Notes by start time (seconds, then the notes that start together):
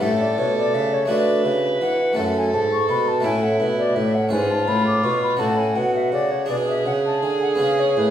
0.00 A2 A3 C#4 G4 A4 E5
0.21 D5
0.38 B2 C#5
0.58 D5
0.74 C#3 E5
0.93 C#5
1.06 D3 A3 D4 F#4
1.10 D3 B4 D5
1.45 C#3 E5
1.81 E3 F#5
2.13 A3 C#4 A4
2.17 F#2 A4 F#5
2.37 G#5
2.53 G#2 A5
2.73 C#6
2.89 B2 B5
3.08 A5
3.20 A3 C#4 A4
3.24 A2 E4 G#5
3.43 F#5
3.60 B2 E5
3.78 D5
3.95 A2 E5
4.15 F#5
4.29 G#2 C#4 F4 B4 G#5
4.51 A5
4.68 A2 B5
4.87 D6
5.04 B2 C#6
5.23 B5
5.37 A2 C#4 F#4 A4 A5
5.58 G#5
5.76 B2 F#5
5.95 E5
6.12 C#3 D5
6.31 C#5
6.46 B2 D4 G#4 D5
6.69 E5
6.86 C#3 F#5
7.06 A5
7.22 D3 G#5
7.43 F#5
7.55 C#3 B3 C#4 G#4
7.60 C#3 F5
7.80 C#5
7.97 A2 B4